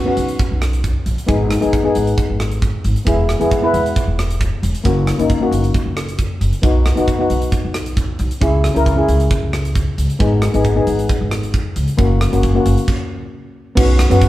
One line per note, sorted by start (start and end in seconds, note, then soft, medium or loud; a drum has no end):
0.05 0.59 B3 medium
0.05 0.59 C#4 medium
0.05 0.60 F#4 medium
0.17 0.34 B1 medium
0.17 closed hi-hat medium
0.28 closed hi-hat medium
0.39 kick loud
0.39 closed hi-hat medium
0.51 0.93 B1 medium
0.62 cross-stick medium
0.62 closed hi-hat medium
0.73 closed hi-hat medium
0.84 kick medium
0.84 closed hi-hat medium
1.06 1.15 A#1 medium
1.06 closed hi-hat medium
1.18 closed hi-hat medium
1.27 1.55 G#1 loud
1.27 1.48 B3 medium
1.27 1.48 D#4 medium
1.27 1.49 G#4 medium
1.27 kick medium
1.27 closed hi-hat medium
1.51 cross-stick medium
1.51 closed hi-hat medium
1.60 1.88 G#1 medium
1.60 1.74 B3 medium
1.60 1.75 D#4 medium
1.60 1.75 G#4 medium
1.60 closed hi-hat medium
1.73 kick medium
1.73 closed hi-hat medium
1.83 2.37 B3 medium
1.83 2.37 D#4 medium
1.83 2.38 G#4 medium
1.95 2.13 G#1 medium
1.95 closed hi-hat medium
2.07 closed hi-hat medium
2.18 kick loud
2.18 closed hi-hat medium
2.30 2.72 G#1 medium
2.40 cross-stick medium
2.40 closed hi-hat medium
2.51 closed hi-hat soft
2.62 kick medium
2.62 closed hi-hat medium
2.84 2.93 G#1 medium
2.84 closed hi-hat medium
2.96 closed hi-hat medium
3.05 3.33 E1 medium
3.05 3.26 B3 medium
3.05 3.27 E4 medium
3.05 3.27 G#4 medium
3.05 kick medium
3.05 closed hi-hat medium
3.29 cross-stick medium
3.29 closed hi-hat medium
3.39 3.66 E1 medium
3.39 3.53 B3 medium
3.39 3.53 E4 medium
3.39 3.54 G#4 medium
3.39 closed hi-hat medium
3.51 kick medium
3.51 closed hi-hat medium
3.62 4.15 B3 medium
3.62 4.16 E4 medium
3.62 4.16 B4 medium
3.74 3.91 E1 medium
3.74 closed hi-hat medium
3.86 closed hi-hat medium
3.96 kick medium
3.96 closed hi-hat medium
4.07 4.50 E1 medium
4.19 cross-stick medium
4.19 closed hi-hat medium
4.31 closed hi-hat medium
4.41 kick medium
4.41 closed hi-hat medium
4.63 4.72 E1 medium
4.63 closed hi-hat medium
4.75 closed hi-hat medium
4.84 5.11 F#1 loud
4.84 5.04 A#3 medium
4.84 5.05 C#4 medium
4.84 5.05 F#4 medium
4.84 kick medium
4.84 closed hi-hat medium
5.07 cross-stick medium
5.07 closed hi-hat medium
5.18 5.44 F#1 medium
5.18 5.31 A#3 medium
5.18 5.32 C#4 medium
5.18 5.32 D#4 medium
5.18 closed hi-hat medium
5.30 kick medium
5.30 closed hi-hat medium
5.40 5.94 A#3 medium
5.40 5.94 C#4 medium
5.40 5.95 F#4 medium
5.51 5.69 F#1 medium
5.51 closed hi-hat medium
5.64 closed hi-hat medium
5.74 kick loud
5.74 closed hi-hat medium
5.86 6.28 F#1 medium
5.97 cross-stick medium
5.97 closed hi-hat medium
6.09 closed hi-hat medium
6.19 kick medium
6.19 closed hi-hat medium
6.41 6.50 F#1 medium
6.41 closed hi-hat medium
6.53 closed hi-hat medium
6.62 6.89 B1 medium
6.62 6.83 B3 medium
6.62 6.83 D#4 medium
6.62 6.84 F#4 medium
6.62 kick loud
6.62 closed hi-hat medium
6.86 cross-stick medium
6.86 closed hi-hat medium
6.96 7.23 B1 medium
6.96 7.09 B3 medium
6.96 7.10 D#4 medium
6.96 7.11 F#4 medium
6.96 closed hi-hat medium
7.08 kick medium
7.08 closed hi-hat soft
7.19 7.72 B3 medium
7.19 7.73 D#4 medium
7.19 7.73 F#4 medium
7.30 7.47 B1 medium
7.30 closed hi-hat medium
7.42 closed hi-hat medium
7.52 kick medium
7.52 closed hi-hat medium
7.65 8.07 B1 medium
7.74 cross-stick medium
7.74 closed hi-hat medium
7.86 closed hi-hat medium
7.97 kick medium
7.97 closed hi-hat medium
8.19 8.28 B1 medium
8.19 closed hi-hat medium
8.31 closed hi-hat medium
8.41 8.68 C#2 medium
8.41 8.61 C#4 medium
8.41 8.62 E4 medium
8.41 8.62 G#4 medium
8.41 kick loud
8.41 closed hi-hat medium
8.64 cross-stick medium
8.64 closed hi-hat medium
8.74 9.01 C#2 medium
8.74 8.88 C#4 medium
8.74 8.89 E4 medium
8.74 8.89 A#4 medium
8.74 closed hi-hat medium
8.86 kick medium
8.86 closed hi-hat medium
8.96 9.50 C#4 medium
8.96 9.51 E4 medium
8.96 9.51 G#4 medium
9.08 9.26 C#2 medium
9.08 closed hi-hat medium
9.20 closed hi-hat medium
9.31 kick loud
9.31 closed hi-hat medium
9.43 9.85 C#2 medium
9.53 cross-stick medium
9.53 closed hi-hat medium
9.65 closed hi-hat medium
9.75 kick medium
9.75 closed hi-hat medium
9.98 10.07 C#2 medium
9.98 closed hi-hat medium
10.10 closed hi-hat medium
10.19 10.46 G#1 loud
10.19 10.40 B3 medium
10.19 10.40 D#4 medium
10.19 10.41 G#4 medium
10.19 kick loud
10.19 closed hi-hat medium
10.42 cross-stick medium
10.42 closed hi-hat medium
10.53 10.79 G#1 medium
10.53 10.67 B3 medium
10.53 10.67 D#4 medium
10.53 10.68 G#4 medium
10.53 closed hi-hat medium
10.64 kick medium
10.64 closed hi-hat soft
10.75 11.29 B3 medium
10.75 11.29 D#4 medium
10.75 11.30 G#4 medium
10.87 11.04 G#1 medium
10.87 closed hi-hat medium
10.99 closed hi-hat medium
11.09 kick loud
11.09 closed hi-hat medium
11.21 11.63 G#1 medium
11.31 cross-stick medium
11.31 closed hi-hat medium
11.43 closed hi-hat soft
11.54 kick medium
11.54 closed hi-hat medium
11.76 11.85 C#2 medium
11.76 closed hi-hat medium
11.88 closed hi-hat medium
11.97 12.25 F#1 medium
11.97 12.18 A#3 medium
11.97 12.18 C#4 medium
11.97 12.19 F#4 medium
11.97 kick loud
11.97 closed hi-hat medium
12.21 cross-stick medium
12.21 closed hi-hat medium
12.32 12.58 F#1 medium
12.32 12.45 A#3 medium
12.32 12.46 C#4 medium
12.32 12.46 F#4 medium
12.32 closed hi-hat medium
12.43 kick medium
12.43 closed hi-hat medium
12.54 12.87 A#3 medium
12.54 12.88 C#4 medium
12.54 12.88 F#4 medium
12.66 12.75 F#1 medium
12.66 closed hi-hat medium
12.77 closed hi-hat medium
12.88 kick medium
12.88 crash medium
13.75 14.03 B1 loud
13.75 13.96 B3 medium
13.75 13.97 C#4 medium
13.75 13.97 F#4 medium
13.75 kick loud
13.75 crash loud
13.99 cross-stick medium
13.99 closed hi-hat medium
14.10 14.28 F#2 medium
14.10 14.29 B3 medium
14.10 14.29 C#4 medium
14.10 14.29 F#4 medium
14.10 closed hi-hat medium
14.21 kick medium
14.21 closed hi-hat medium